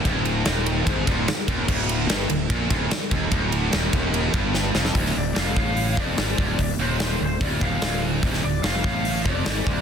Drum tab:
CC |----------------|x---------------|----------------|----------------|
RD |x-x-x-x-x-x-x-x-|--x-x-x-x-x-x-x-|x-x-x-x-x-x-----|----------------|
HH |----------------|----------------|----------------|o---o---o---o---|
SD |----o-------o---|----o-------o---|----o-------o-oo|-o--o-------o---|
BD |o-------o-o---o-|o-------o-o---o-|o-----o---o-----|o-----o---o---o-|

CC |----------------|----------------|
RD |----------------|----------------|
HH |o---o---o---o---|o---o---o---o---|
SD |----o-------o---|-o--o-------o---|
BD |o-------o-o-----|o-----o---o---o-|